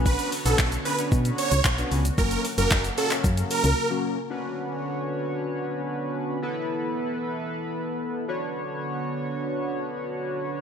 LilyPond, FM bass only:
\new Staff \with { instrumentName = "FM bass" } { \clef bass \time 4/4 \key b \minor \tempo 4 = 113 b,,8 r16 b,,16 b,,8 r8 b,8 r16 cis,16 b,,8 cis,8 | fis,,8 r16 fis,,16 fis,,8 r8 fis,8 r16 cis,16 r4 | r1 | r1 |
r1 | }